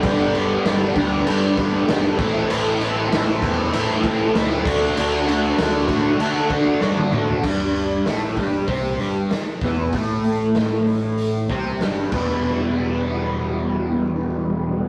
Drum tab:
CC |x-x-x-x-x-x-x-x-|x-x-x-x-x-x-x-x-|x-x-x-x-x-x-----|x---------------|
HH |----------------|----------------|----------------|--o-o-o-o-o-o-o-|
SD |----o-------o---|----o-------o---|----o-------o---|----o-------o---|
T1 |----------------|----------------|-------------o--|----------------|
T2 |----------------|----------------|--------------o-|----------------|
FT |----------------|----------------|---------------o|----------------|
BD |o-----o---o---o-|------o---o---o-|------o---o-----|o-----o-o-----o-|

CC |--------------x-|----------------|
HH |o-o-o-o-o-o-o---|----------------|
SD |----o-------o---|----------------|
T1 |----------------|----------------|
T2 |----------------|----------------|
FT |----------------|----------------|
BD |o---------o---o-|----------------|